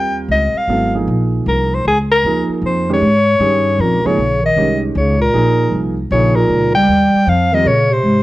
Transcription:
Already playing: upright bass D#2, grand piano G3 C4 F4 A#4, soprano saxophone G5
0.28 upright bass C#2, soprano saxophone D#5
0.54 soprano saxophone F5, muted upright bass stroke
0.68 upright bass G#1, grand piano F#3 B3 E4 A4
0.94 grand piano F3 A#3 D#4 G#4
1.07 upright bass A#1
1.46 upright bass C2, soprano saxophone A#4
1.75 soprano saxophone C5
1.85 upright bass C#2, soprano saxophone G#4
2.11 soprano saxophone A#4
2.23 upright bass D#2, grand piano F3 A#3 D#4 G#4
2.49 muted upright bass stroke
2.62 upright bass F2
2.66 soprano saxophone C5
2.89 grand piano D#3 G#3 C#4 G4
2.93 soprano saxophone C#5
3.01 upright bass G#2
3.39 upright bass G2, grand piano D#3 C#4 G4 G#4
3.78 upright bass F2, bass clarinet A#2, soprano saxophone A#4
3.93 upright bass C#2
4.04 upright bass G#1, bass clarinet C#3, grand piano F3 A#3 D#4 G#4, soprano saxophone C#5
4.18 upright bass A#1
4.42 bass clarinet D#3, soprano saxophone D#5
4.56 upright bass C2, grand piano D#3 G#3 C#4 G4
4.95 upright bass C#2, bass clarinet C#3, soprano saxophone C#5
5.20 bass clarinet A#2, soprano saxophone A#4
5.34 upright bass A#1, grand piano F3 A#3 D#4 G#4
5.72 upright bass C2
6.11 upright bass A#1, bass clarinet C#3, grand piano F3 A#3 D#4 G#4, soprano saxophone C#5
6.36 bass clarinet A#2, soprano saxophone A#4
6.49 upright bass C#2
6.75 bass clarinet G3, soprano saxophone G5
6.88 upright bass D#2
7.14 muted upright bass stroke
7.27 upright bass F2, bass clarinet F3, soprano saxophone F5
7.52 bass clarinet D#3, grand piano G3 C4 F4 A#4, soprano saxophone D#5
7.65 upright bass A#2, bass clarinet C#3, soprano saxophone C#5
7.91 bass clarinet C3, soprano saxophone C5
8.04 upright bass G#2

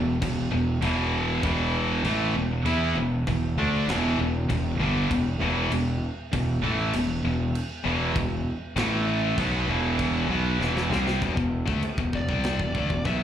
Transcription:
Already playing: fingered electric bass E1, distorted electric guitar E2 B2
0.22 fingered electric bass E1, distorted electric guitar E2 B2, kick, crash
0.52 fingered electric bass E1, distorted electric guitar E2 B2
0.82 fingered electric bass E1, distorted electric guitar E2 B2 E3, crash
1.43 fingered electric bass E1, distorted electric guitar E2 B2 E3, kick, crash
2.04 fingered electric bass A1, distorted electric guitar A2 E3 A3, crash
2.34 fingered electric bass E1, distorted electric guitar E2 B2
2.65 fingered electric bass E2, distorted electric guitar E3 B3 E4, crash
2.95 fingered electric bass E1, distorted electric guitar E2 B2
3.27 fingered electric bass E1, distorted electric guitar E2 B2, kick, crash
3.57 fingered electric bass D2, distorted electric guitar D3 A3 D4
3.88 fingered electric bass E1, distorted electric guitar E2 B2 E3, snare, crash
4.19 fingered electric bass E1, distorted electric guitar E2 B2
4.49 fingered electric bass E1, distorted electric guitar E2 B2, kick, crash
4.78 fingered electric bass G1, distorted electric guitar G2 D3 G3
5.10 fingered electric bass E1, distorted electric guitar E2 B2, kick, crash
5.41 fingered electric bass E1, distorted electric guitar E2 B2 E3
5.72 fingered electric bass E1, distorted electric guitar E2 B2, crash
6.33 fingered electric bass E1, distorted electric guitar E2 B2, kick, crash
6.63 fingered electric bass A1, distorted electric guitar A2 E3 A3
6.93 fingered electric bass E1, distorted electric guitar E2 B2, crash
7.25 fingered electric bass E1, distorted electric guitar E2 B2
7.55 crash
7.84 fingered electric bass E1, distorted electric guitar E2 B2 E3
8.16 fingered electric bass E1, distorted electric guitar E2 B2, kick, crash
8.76 fingered electric bass A1, distorted electric guitar A2 E3 A3, snare, crash
9.38 fingered electric bass B1, distorted electric guitar B2 F#3 B3, kick, crash
9.67 fingered electric bass E1, distorted electric guitar E2 B2 E3
9.99 kick, crash
10.29 fingered electric bass B1, distorted electric guitar B2 F#3 B3
10.59 fingered electric bass E1, distorted electric guitar E2 B2 E3, snare
10.77 snare
10.89 fingered electric bass C2, distorted electric guitar C3 G3 C4, snare
11.08 snare
11.21 fingered electric bass E1, distorted electric guitar E2 B2, kick, china
11.36 fingered electric bass E1, distorted electric guitar E2 B2, kick
11.66 fingered electric bass D2, distorted electric guitar D3 A3, kick
11.83 muted fingered electric bass stroke, muted distorted electric guitar stroke, china
11.98 fingered electric bass E1, distorted electric guitar E2 B2, kick
12.13 fingered electric bass E1, distorted electric guitar E2 B2, lead electric guitar D5, kick
12.29 fingered electric bass C2, distorted electric guitar C3 G3 C4, kick
12.44 snare, china
12.60 fingered electric bass E1, distorted electric guitar E2 B2, kick
12.75 fingered electric bass D2, distorted electric guitar D3 A3, kick
12.90 fingered electric bass E1, distorted electric guitar E2 B2, kick
13.05 fingered electric bass B1, distorted electric guitar B2 F#3 B3, lead electric guitar E5, kick, china

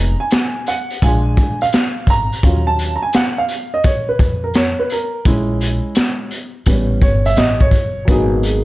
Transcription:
Already playing: upright bass F1, grand piano G#3 B3 D#4 A#5
0.20 grand piano G#5
0.31 snare, closed hi-hat
0.66 grand piano F#5, closed hi-hat
0.90 closed hi-hat
1.02 upright bass A#1, grand piano G#3 D4 F4 G#5, kick, closed hi-hat
1.37 kick, closed hi-hat
1.61 grand piano F5, closed hi-hat
1.72 snare, closed hi-hat
2.07 upright bass G#1, grand piano A#5, kick, closed hi-hat
2.32 closed hi-hat
2.43 upright bass D#2, grand piano F#3 C#4 F4, kick, closed hi-hat
2.67 grand piano A5
2.79 closed hi-hat
2.96 grand piano A#5
3.02 grand piano G#5
3.13 grand piano F#5, snare, closed hi-hat
3.38 grand piano F5
3.49 closed hi-hat
3.74 grand piano D#5
3.84 grand piano C#5, kick, closed hi-hat
4.09 grand piano B4
4.19 upright bass F2, kick, closed hi-hat
4.44 grand piano A#4
4.54 grand piano C#5, snare, closed hi-hat
4.79 grand piano B4
4.90 grand piano A#4, closed hi-hat
5.25 upright bass A#1, grand piano G#3 C#4 E4, kick, closed hi-hat
5.61 closed hi-hat
5.95 snare, closed hi-hat
6.31 closed hi-hat
6.66 upright bass A1, grand piano G3 B3 C#4, kick, closed hi-hat
7.01 upright bass G1, grand piano C#5, kick, closed hi-hat
7.25 grand piano E5, closed hi-hat
7.36 upright bass A1, grand piano D#5, snare, closed hi-hat
7.61 grand piano C#5, kick
7.71 upright bass F#1, kick, closed hi-hat
8.05 upright bass G#1, grand piano F#3 A#3 B3, kick, closed hi-hat
8.09 grand piano D#4 G#4, vibraphone F#4
8.43 vibraphone G#4, closed hi-hat

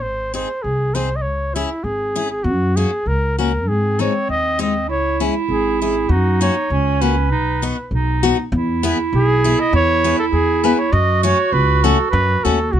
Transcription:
0.02 upright bass G#1, trumpet C5
0.34 steel-string acoustic guitar C4 D#4 G#4, trumpet C5
0.63 upright bass C2, trumpet G#4
0.94 steel-string acoustic guitar C4 D#4 G#4, trumpet C5
1.16 trumpet D#5
1.21 upright bass C#2, trumpet C#5
1.54 steel-string acoustic guitar C#4 E4 G#4, trumpet E4
1.84 upright bass G#1, trumpet G#4
2.16 steel-string acoustic guitar C#4 E4 G#4
2.31 trumpet G#4
2.44 upright bass F#2, trumpet F#4
2.76 steel-string acoustic guitar A#3 C#4 F#4, trumpet G#4
3.06 upright bass C#2, trumpet A#4
3.38 steel-string acoustic guitar A#3 C#4 F#4, trumpet A#4
3.66 upright bass G#2, clarinet C4, trumpet G#4
3.99 steel-string acoustic guitar G#3 C4 D#4, trumpet C#5
4.29 upright bass D#2, trumpet D#5
4.59 steel-string acoustic guitar G#3 C4 D#4, trumpet D#5
4.88 upright bass C#2, clarinet E4, trumpet C#5
5.20 steel-string acoustic guitar G#3 C#4 E4
5.48 upright bass G#1, trumpet G#4
5.82 steel-string acoustic guitar G#3 C#4 E4, trumpet G#4
6.09 upright bass F#2, clarinet D#4, trumpet F#4
6.41 steel-string acoustic guitar A#3 C#4 F#4, trumpet C#5
6.70 upright bass C#2, clarinet C#4
7.01 steel-string acoustic guitar A#3 C#4 F#4, trumpet B4
7.31 upright bass B1, clarinet D#4
7.62 steel-string acoustic guitar B3 D#4 F#4
7.91 upright bass B1, clarinet D#4
8.23 steel-string acoustic guitar B3 D#4 F#4
8.52 upright bass E2, clarinet E4
8.83 steel-string acoustic guitar B3 E4 G#4
9.13 upright bass B1, trumpet G#4
9.44 steel-string acoustic guitar B3 E4 G#4
9.60 trumpet D#5
9.73 upright bass E2, trumpet C#5
10.04 steel-string acoustic guitar B3 E4 G#4
10.19 trumpet A4
10.32 upright bass E2, trumpet G#4
10.64 steel-string acoustic guitar B3 E4 G#4, trumpet B4
10.78 trumpet C#5
10.92 upright bass F#2, clarinet F#4, trumpet D#5
11.23 steel-string acoustic guitar A3 C#4 F#4, trumpet C#5
11.52 upright bass C#2, trumpet B4
11.84 steel-string acoustic guitar A3 C#4 F#4, trumpet A4
12.10 upright bass F#2, trumpet B4
12.44 upright bass D#2, steel-string acoustic guitar A3 C#4 F#4, trumpet A4
12.72 upright bass C#2, trumpet F#4

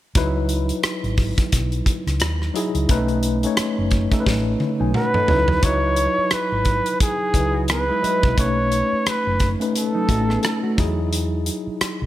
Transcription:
0.15 fingered electric bass C#2, tine electric piano F#3 D#4 E4 B4, kick, closed hi-hat
0.49 closed hi-hat
0.69 closed hi-hat
0.83 muted fingered electric bass stroke, cross-stick, closed hi-hat
1.04 fingered electric bass G#1, closed hi-hat
1.17 kick, open hi-hat
1.38 kick, closed hi-hat
1.52 fingered electric bass B1, kick, closed hi-hat
1.72 closed hi-hat
1.86 kick, closed hi-hat
2.07 fingered electric bass C#2, cross-stick, closed hi-hat
2.20 fingered electric bass D#2, cross-stick, closed hi-hat
2.42 cross-stick
2.54 tine electric piano F#3 D#4 E4 G#4, closed hi-hat
2.75 fingered electric bass C#2, closed hi-hat
2.89 fingered electric bass B1, tine electric piano A3 C#4 D#4 B4, kick, closed hi-hat
3.08 closed hi-hat
3.23 closed hi-hat
3.43 tine electric piano A3 C#4 D#4 C#5, closed hi-hat
3.57 muted fingered electric bass stroke, cross-stick, closed hi-hat
3.78 fingered electric bass F#1
3.91 kick, closed hi-hat
4.11 tine electric piano A3 C#4 D#4 A4, kick, closed hi-hat
4.20 tine electric piano B4
4.26 fingered electric bass A1, kick, snare
4.60 high tom
4.80 fingered electric bass B1, clean electric guitar F#3 D#4, tine electric piano G#5
4.94 clean electric guitar A3 F#4, flugelhorn B4, tine electric piano F#5, mid tom
5.14 clean electric guitar C#4 A4, tine electric piano D#5, mid tom
5.28 fingered electric bass C#2, tine electric piano F#3 D#4 E4 B4, floor tom
5.48 floor tom
5.63 fingered electric bass C#2, tine electric piano F#3 D#4 E4 B4, flugelhorn C#5, kick, closed hi-hat
5.96 closed hi-hat
6.18 muted fingered electric bass stroke
6.31 flugelhorn B4, muted fingered electric bass stroke, cross-stick, closed hi-hat
6.52 fingered electric bass G#1
6.65 kick, closed hi-hat
6.86 closed hi-hat
7.00 flugelhorn G#4, kick, closed hi-hat
7.34 fingered electric bass C#2, tine electric piano F#3 D#4 E4 B4, kick, closed hi-hat
7.54 clean electric guitar F#4
7.68 clean electric guitar B3 G#4, flugelhorn B4, cross-stick, closed hi-hat
7.88 clean electric guitar G#3 E4
8.02 tine electric piano F#3 E4 B4 D#5, muted fingered electric bass stroke, closed hi-hat
8.23 fingered electric bass B1, kick
8.37 fingered electric bass B1, tine electric piano A3 C#4 D#4 B4, flugelhorn C#5, kick, closed hi-hat
8.72 closed hi-hat
8.93 muted fingered electric bass stroke
9.06 flugelhorn B4, muted fingered electric bass stroke, cross-stick, closed hi-hat
9.27 fingered electric bass F#1
9.40 kick, closed hi-hat
9.60 tine electric piano A3 C#4 D#4 B4, closed hi-hat
9.76 flugelhorn A4, closed hi-hat
9.94 clean electric guitar F#3 D#4
10.09 fingered electric bass A1, tine electric piano A3 C#4 D#4 A4, clean electric guitar A3 F#4, kick, closed hi-hat
10.28 clean electric guitar B3 G#4, cross-stick
10.43 clean electric guitar C#4 A4, cross-stick, closed hi-hat
10.63 clean electric guitar A3 F#4
10.77 fingered electric bass E2, tine electric piano F#3 D#4 E4 G#4, kick, closed hi-hat
11.13 closed hi-hat
11.46 closed hi-hat
11.67 muted fingered electric bass stroke
11.81 muted fingered electric bass stroke, cross-stick, closed hi-hat
12.02 fingered electric bass B1

